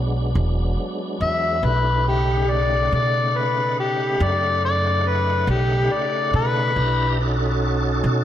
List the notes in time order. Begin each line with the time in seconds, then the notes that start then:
Already playing: B1 F#3 G#3 B3 D4
0.35 E1
1.21 E2 E5
1.63 B1 A3 D4 E4 G4 B4
2.07 C#3 A3 D#4 G4 F#5
2.50 D5
2.92 B2 D5
3.37 B4
3.80 G4
4.20 F#2 D5
4.65 D5
5.08 B4
5.47 B1 G4
5.94 D5
6.34 B2 B4
6.76 B1 D4 E4 G4 A#5
7.20 C#4 D#4 F#4 A4
8.04 B2